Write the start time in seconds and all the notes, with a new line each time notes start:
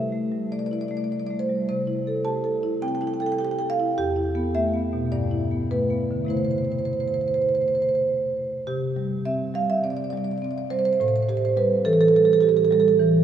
Already playing: C3 G3 E5
0.12 A3
0.32 G3
0.52 A3 D5
0.59 D5
0.66 D5
0.72 E4 D5
0.81 D5
0.88 A3 D5
0.97 D5
1.04 D5
1.11 G3 D5
1.20 D5
1.27 A3 D5
1.39 C5
1.49 G3
1.69 C3 C5
1.87 E4
2.07 A4
2.25 G4 A5
2.44 A4
2.63 E4
2.82 C4 G5
2.88 G5
2.95 G5
3.01 E4 G5
3.07 G5
3.14 G5
3.20 A4 G5
3.26 G5
3.32 G5
3.39 G4 G5
3.45 G5
3.51 G5
3.59 A4 G5
3.70 F5
3.80 E4
3.98 E2 G4
4.16 E4
4.35 B3
4.55 A3 E5
4.74 B3
4.93 B2
5.12 G2 D5
5.31 E4
5.51 B3
5.71 A3 B4
5.90 B3
6.11 D3
6.25 C3 A3 E4
6.30 C5
6.37 C5
6.45 C5
6.51 C5
6.58 C5
6.65 C5
6.72 C5
6.79 C5
6.85 C5
6.93 C5
7.00 C5
7.08 C5
7.14 C5
7.21 C5
7.28 C5
7.34 C5
7.42 C5
7.49 C5
7.55 C5
7.62 C5
7.68 C5
7.75 C5
7.82 C5
7.89 C5
7.95 C5
8.67 C3 G4
8.96 G3
9.25 C4 E5
9.54 G3 F5
9.70 E5
9.84 C4 D5
9.90 D5
9.97 D5
10.04 D5
10.10 G3 D5
10.17 D5
10.24 D5
10.31 D5
10.38 D5
10.42 C4 D5
10.51 D5
10.58 D5
10.70 G3 C5
10.79 C5
10.85 C5
10.93 C5
11.00 A2 C5
11.08 C5
11.16 C5
11.23 C5
11.29 G4 C5
11.37 C5
11.45 C5
11.57 G3 B4
11.85 E3 A4
11.93 A4
12.01 A4
12.08 A4
12.13 G3 A4
12.25 A4
12.33 A4
12.41 G4 A4
12.49 A4
12.57 A4
12.65 A4
12.71 G3 A4
12.80 A4
12.88 A4
13.00 E3